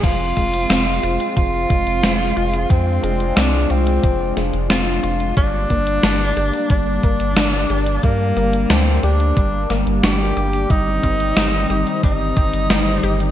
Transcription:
<<
  \new Staff \with { instrumentName = "Tenor saxophone" } { \time 4/4 \key f \dorian \tempo 4 = 90 f'2 f'2 | c'4 d'8 c'4 r8 f'4 | d'2 d'2 | bes4 c'8 d'4 r8 g'4 |
ees'2 ees'2 | }
  \new Staff \with { instrumentName = "Synth arpeggio sound" } { \time 4/4 \key f \dorian f8 aes8 c'8 f'8 f8 aes8 c'8 f'8 | f8 aes8 c'8 f'8 f8 aes8 c'8 f'8 | g8 bes8 d'8 g'8 g8 bes8 d'8 g'8 | g8 bes8 d'8 g'8 g8 bes8 d'8 g'8 |
g8 c'8 ees'8 g'8 g8 c'8 ees'8 g'8 | }
  \new Staff \with { instrumentName = "Analog synth pad" } { \time 4/4 \key f \dorian << { <aes f'>1~ | <aes f'>1 | g1~ | g1 |
<ees c'>1 | } \\ { c'1 | d'1 | bes1~ | bes1 |
r1 | } >> }
  \new Staff \with { instrumentName = "Analog synth bass" } { \clef bass \time 4/4 \key f \dorian f,,8 f,,8 f,,8 f,,16 r16 f,,8 f,,16 f,,16 f,,8 f,,8 | f,8 f,,8 c,8 c,8 f,,8 f,,16 f,,16 f,,8 f,,8 | g,,8 g,,8 g,,8 g,,16 r16 g,,8 g,,16 g,,16 g,,8 g,,8 | g,8 g,,8 d,8 d,8 g,,8 g,,16 g,,16 g,,8 g,,8 |
g,,8 g,,8 g,,8 g,,16 r16 g,,8 g,,16 g,,16 g,,8 g,,8 | }
  \new DrumStaff \with { instrumentName = "Drums" } \drummode { \time 4/4 <cymc hh bd>8 <hh bd>16 hh16 <hh sn>8 hh16 hh16 <hh bd>8 <hh bd>16 hh16 <hh sn>8 hh16 hh16 | <hh bd>8 hh16 hh16 <hh sn>8 hh16 hh16 <hh bd>8 <hh sn>16 hh16 <hh sn>8 hh16 hh16 | <hh bd>8 <hh bd>16 hh16 <hh sn>8 hh16 hh16 <hh bd>8 <hh bd>16 hh16 <hh sn>8 hh16 hh16 | <hh bd>8 hh16 hh16 <hh sn>8 hh16 hh16 <hh bd>8 <hh sn>16 hh16 <hh sn>8 hh16 hh16 |
<hh bd>8 <hh bd>16 hh16 <hh sn>8 hh16 hh16 <hh bd>8 <hh bd>16 hh16 <hh sn>8 hh16 hh16 | }
>>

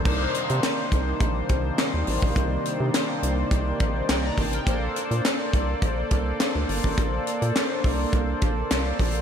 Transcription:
<<
  \new Staff \with { instrumentName = "Analog polysynth" } { \time 4/4 \key c \dorian \tempo 4 = 104 << { r1 | r2. <bes' g''>16 <d'' bes''>16 <c'' a''>16 <bes' g''>16~ | <bes' g''>16 r2. r8. | r1 | } \\ { <bes d' ees' c''>1~ | <bes d' ees' c''>1 | <bes d' a' c''>1~ | <bes d' a' c''>1 | } >> }
  \new Staff \with { instrumentName = "Analog synth pad" } { \time 4/4 \key c \dorian <c ees g bes d''>1~ | <c ees g bes d''>1 | <bes a'>1~ | <bes a'>1 | }
  \new Staff \with { instrumentName = "Analog synth bass" } { \clef bass \time 4/4 \key c \dorian c,8 r16 c16 r8 c,8 bes,,8 c,8 r16 ees,16 a,,16 bes,,16 | c,8 r16 c16 r8 c,8 c,8 bes,,8 c,8 a,,8 | bes,,8 r16 bes,16 r8 c,8 bes,,8 c,8 r16 d,16 g,,16 a,,16 | bes,,8 r16 bes,16 r8 c,8 c,8 bes,,8 c,8 bes,,8 | }
  \new DrumStaff \with { instrumentName = "Drums" } \drummode { \time 4/4 <cymc bd>8 hh16 hh16 <hc hh sn>8 <hh bd>8 <hh bd>8 <hh bd>8 <hc hh sn>8 hho16 bd16 | <hh bd>8 hh8 <hc hh sn>8 hh8 <hh bd>8 <hh bd>8 <hc hh sn>8 <hho bd>16 hh16 | <hh bd>8 hh16 hh16 <hc hh sn>8 <hh bd>8 <hh bd>8 <hh bd>8 <hc hh sn>8 hho16 bd16 | <hh bd>8 hh16 hh16 <hc hh sn>8 <hho bd>8 <hh bd>8 <hh bd>8 <hc hh sn>8 <hho bd>16 hh16 | }
>>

